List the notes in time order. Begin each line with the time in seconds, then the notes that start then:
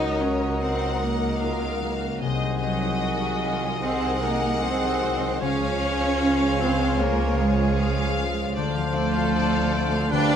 Already playing: C#2 C#3 F#3 C#4 D#4 F4 A#4 C#5 D#5 F#5 A#5 C#6
0.00 F#4
0.20 C#4 C#5 D#5
0.40 A#5
0.59 C4 D#4 C5 D#5 F#5
0.81 A#5
1.01 A#3 A#4 D#5
1.21 A#4
1.40 D#4 F4 A#4 F5
1.62 C#4
1.81 F#3 F#4
2.01 C#4
2.20 C2 C3 D#3 G#4 C5 D#5 F#5 G#5
2.41 F#3
2.59 F#3 G#3 F#4 D#5
2.81 D#4
3.01 F#4 G#4 A#4
3.22 D#4
3.42 F4 D#5
3.62 G#5
3.82 C4 D#4 G#4 C5 D#5 F#5
4.03 G#5
4.22 A#3 A#4 D#5
4.43 G#4
4.62 C4 D#4 G#4 C5 D#5 F#5
4.82 F#3
5.02 G#3 F#4
5.21 F#3
5.40 C#2 C#3 F3 C#4 F4 G#4 C#5 F5 G#5
5.60 G#3
5.80 C#4
6.00 F4
6.19 F4 G#4 F5
6.40 C#5
6.61 C4 F4 C5 F5
6.81 G#5
7.00 A#3 F4 A#4 C#5 F5
7.20 G#5
7.40 G#3 G#4 F5
7.60 G#4
7.77 F4 G#4 F5
7.99 G#3
8.18 C#4
8.38 G#3
8.54 D2 D3 D4 A4 C5 D5 F5 A5
8.74 F3 F4 D5 F5
8.94 A3 C4 D4 A4 C5 D5
9.13 F4 D5 F5
9.33 C4 D4 C5 D5
9.53 F4 D5 F5
9.71 D4 C5 D5 F5
9.91 F4 C5 D5 F5
10.11 D3 F3 D4 F4 G4 B4 D5 F5 G5
10.31 G3 G4 D5 F5